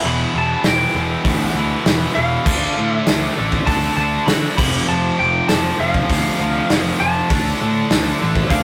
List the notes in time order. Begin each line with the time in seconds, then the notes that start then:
0.04 E1 E2 B2 E3 B5
0.34 E1 E2 B2 E3 A5
0.64 E1 E2 B2 E3 G5, snare, open hi-hat
0.95 E1 E2 B2 E3
1.24 D2 E2 B2 E3, kick, open hi-hat
1.54 D2 E2 B2 E3
1.86 E1 E2 B2 E3, snare, open hi-hat
2.15 E1 E2 B2 E3 F5
2.46 D2 D3 A3 D4, kick, crash
2.78 A2 D3 A3 D4
2.92 E5
3.07 D2 D3 A3 D4, snare, open hi-hat
3.38 A1 D3 A3 D4
3.52 kick
3.67 D2 D3 A3 D4 A5, kick, open hi-hat
3.97 D2 D3 A3 D4 A5
4.26 D3 A3 D4 B5, snare, open hi-hat
4.57 F1 F2 C3 F3 B5, kick, crash
4.89 F1 F2 C3 F3 A5
5.19 F1 F2 C3 F3 G5
5.48 F1 F2 C3 F3 A5, snare, open hi-hat
5.79 F1 F2 C3 F3 F5
5.94 kick
6.09 D2 F2 C3 F3, kick, open hi-hat
6.40 D2 F2 C3 F3
6.70 F1 F2 C3 F3, snare, open hi-hat
7.00 F1 F2 C3 F3 A5
7.30 D2 D3 A3 D4, kick, open hi-hat
7.60 A2 D3 A3 D4
7.91 D2 D3 A3 D4, snare, open hi-hat
8.21 A1 D3 A3 D4
8.35 kick
8.50 D2 D3 A3 D4 F5, kick, open hi-hat